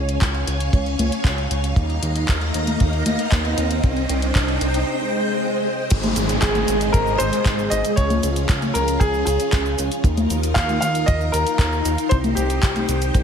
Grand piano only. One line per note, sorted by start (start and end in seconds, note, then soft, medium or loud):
6.41 6.95 G#4 medium
6.92 7.20 A#4 loud
7.18 7.72 C5 loud
7.70 7.98 D#5 loud
7.96 8.77 C#5 loud
8.74 8.98 A#4 medium
9.00 9.24 G#4 medium
9.25 9.74 G#4 medium
10.54 10.79 F5 loud
10.80 11.08 F5 loud
11.06 11.34 D#5 loud
11.32 12.06 A#4 loud
12.09 12.15 C5 loud
12.35 13.23 G4 medium